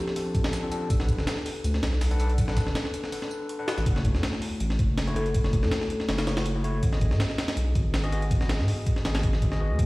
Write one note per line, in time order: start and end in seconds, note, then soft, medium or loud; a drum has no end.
0.00 0.14 F3 medium
0.00 0.14 C4 medium
0.00 0.14 D4 medium
0.00 0.35 G4 loud
0.00 0.14 A4 medium
0.07 snare soft
0.16 0.61 F3 medium
0.16 0.61 C4 medium
0.16 0.61 D4 medium
0.16 0.61 A4 medium
0.16 closed hi-hat medium
0.16 open hi-hat medium
0.35 kick loud
0.35 closed hi-hat medium
0.35 tambourine medium
0.44 snare loud
0.53 snare loud
0.53 closed hi-hat medium
0.53 tambourine medium
0.63 0.70 F3 medium
0.63 0.70 C4 medium
0.63 0.70 D4 medium
0.63 0.70 A4 medium
0.72 0.89 F3 medium
0.72 0.89 C4 medium
0.72 0.89 D4 medium
0.72 0.89 A4 medium
0.72 closed hi-hat medium
0.72 tambourine medium
0.90 1.20 B1 loud
0.90 kick loud
0.90 closed hi-hat medium
0.90 tambourine medium
1.00 2.09 D4 medium
1.00 2.09 A4 medium
1.00 2.09 B4 medium
1.00 2.09 F#5 medium
1.00 snare medium
1.09 kick loud
1.09 closed hi-hat medium
1.09 tambourine medium
1.18 1.26 F#1 loud
1.18 snare medium
1.27 snare loud
1.27 closed hi-hat medium
1.27 tambourine medium
1.37 snare soft
1.46 open hi-hat medium
1.46 tambourine medium
1.64 1.81 D2 loud
1.64 closed hi-hat medium
1.64 tambourine medium
1.74 snare medium
1.83 2.46 B1 medium
1.83 snare loud
1.83 closed hi-hat medium
1.83 tambourine medium
1.93 snare soft
2.01 snare loud
2.01 open hi-hat medium
2.01 tambourine medium
2.11 2.18 D4 loud
2.11 2.18 A4 medium
2.11 2.18 B4 medium
2.11 2.18 F#5 loud
2.11 closed hi-hat soft
2.20 2.31 D4 medium
2.20 2.31 A4 medium
2.20 2.31 B4 medium
2.20 2.31 F#5 loud
2.20 closed hi-hat medium
2.20 tambourine medium
2.30 closed hi-hat soft
2.38 kick loud
2.38 closed hi-hat loud
2.38 tambourine medium
2.48 2.68 B1 medium
2.48 3.10 D4 medium
2.48 3.10 A4 medium
2.48 3.10 B4 medium
2.48 3.10 F#5 medium
2.48 snare medium
2.57 kick loud
2.57 snare loud
2.57 closed hi-hat medium
2.57 tambourine medium
2.67 2.74 F#1 loud
2.67 snare medium
2.75 snare loud
2.75 closed hi-hat medium
2.75 tambourine medium
2.85 snare soft
2.94 closed hi-hat medium
2.94 tambourine medium
3.04 snare soft
3.12 3.57 D4 medium
3.12 3.57 A4 medium
3.12 3.57 B4 medium
3.12 3.57 F#5 medium
3.12 closed hi-hat medium
3.12 open hi-hat medium
3.22 snare soft
3.31 tambourine medium
3.49 closed hi-hat medium
3.59 3.67 D4 medium
3.59 3.67 A4 medium
3.59 3.67 B4 medium
3.59 3.67 F#5 medium
3.68 3.85 D4 medium
3.68 3.85 A4 medium
3.68 3.85 B4 medium
3.68 3.85 F#5 medium
3.68 snare loud
3.68 closed hi-hat medium
3.68 tambourine medium
3.78 3.85 A1 loud
3.78 snare soft
3.78 closed hi-hat soft
3.86 4.16 F#1 loud
3.86 kick loud
3.86 closed hi-hat medium
3.96 5.05 A3 medium
3.96 5.05 E4 medium
3.96 5.05 F#4 medium
3.96 5.05 C#5 medium
3.96 snare medium
4.05 kick loud
4.05 closed hi-hat medium
4.15 4.23 F#2 loud
4.15 snare medium
4.23 snare loud
4.23 closed hi-hat medium
4.33 snare soft
4.42 open hi-hat medium
4.60 4.77 A1 loud
4.60 closed hi-hat medium
4.70 snare medium
4.79 5.43 F#1 medium
4.79 kick loud
4.79 closed hi-hat medium
4.97 snare loud
4.97 closed hi-hat medium
5.07 5.15 A3 loud
5.07 5.15 E4 medium
5.07 5.15 F#4 medium
5.07 5.15 C#5 loud
5.07 closed hi-hat soft
5.16 5.27 A3 medium
5.16 5.27 E4 medium
5.16 5.27 F#4 medium
5.16 5.39 A4 medium
5.16 5.27 C#5 loud
5.16 closed hi-hat medium
5.26 closed hi-hat soft
5.34 kick loud
5.34 closed hi-hat medium
5.44 5.64 F#1 loud
5.44 6.06 A3 medium
5.44 6.06 E4 medium
5.44 6.06 F#4 medium
5.44 6.06 C#5 medium
5.44 snare medium
5.53 kick loud
5.53 closed hi-hat medium
5.63 5.71 F#2 loud
5.63 5.85 A4 loud
5.63 snare medium
5.71 snare loud
5.71 closed hi-hat medium
5.81 snare medium
5.90 closed hi-hat medium
6.00 snare soft
6.09 6.81 F#1 loud
6.09 6.54 A3 medium
6.09 6.54 E4 medium
6.09 6.54 F#4 medium
6.09 6.53 C#5 medium
6.09 snare loud
6.09 closed hi-hat medium
6.18 snare loud
6.18 closed hi-hat medium
6.27 6.79 C#5 medium
6.27 snare loud
6.27 closed hi-hat medium
6.37 snare loud
6.37 closed hi-hat medium
6.46 closed hi-hat loud
6.55 6.63 A3 medium
6.55 6.63 E4 medium
6.55 6.63 F#4 medium
6.55 6.63 C#5 medium
6.64 6.82 A3 medium
6.64 6.82 E4 medium
6.64 6.82 F#4 medium
6.64 6.82 C#5 medium
6.64 closed hi-hat medium
6.83 7.12 G#1 loud
6.83 kick loud
6.83 closed hi-hat medium
6.93 8.01 B3 medium
6.93 8.01 F#4 medium
6.93 8.01 G#4 medium
6.93 8.01 D#5 medium
6.93 snare medium
7.01 kick loud
7.01 closed hi-hat medium
7.11 7.19 G#2 loud
7.11 snare medium
7.20 snare loud
7.20 closed hi-hat medium
7.30 snare soft
7.38 snare loud
7.38 closed hi-hat medium
7.48 snare loud
7.48 closed hi-hat medium
7.57 7.74 B1 loud
7.57 closed hi-hat medium
7.75 8.39 G#1 medium
7.75 kick loud
7.75 closed hi-hat medium
7.94 snare loud
7.94 closed hi-hat medium
8.04 8.11 B3 medium
8.04 8.11 F#4 medium
8.04 8.11 G#4 medium
8.04 8.11 D#5 loud
8.04 closed hi-hat soft
8.12 8.24 B3 medium
8.12 8.24 F#4 medium
8.12 8.24 G#4 medium
8.12 8.24 D#5 loud
8.12 closed hi-hat medium
8.22 closed hi-hat soft
8.31 kick loud
8.31 closed hi-hat medium
8.41 8.61 G#1 loud
8.41 9.03 B3 medium
8.41 9.03 F#4 medium
8.41 9.03 G#4 medium
8.41 9.03 D#5 medium
8.41 snare medium
8.49 snare loud
8.49 closed hi-hat medium
8.59 8.67 G#2 loud
8.59 snare soft
8.68 open hi-hat medium
8.86 kick loud
8.86 closed hi-hat medium
8.96 snare soft
9.05 9.72 G#1 loud
9.05 9.50 B3 medium
9.05 9.50 F#4 medium
9.05 9.50 G#4 medium
9.05 9.50 D#5 medium
9.05 snare loud
9.05 closed hi-hat medium
9.15 snare loud
9.15 closed hi-hat medium
9.23 kick loud
9.23 closed hi-hat medium
9.33 snare soft
9.42 kick medium
9.42 closed hi-hat medium
9.52 9.59 B3 medium
9.52 9.59 F#4 medium
9.52 9.59 G#4 medium
9.52 9.59 D#5 medium
9.52 snare soft
9.60 9.78 B3 medium
9.60 9.78 F#4 medium
9.60 9.78 G#4 medium
9.60 9.78 D#5 medium
9.70 9.78 D#2 medium
9.79 9.86 D2 loud
9.79 kick loud
9.79 closed hi-hat medium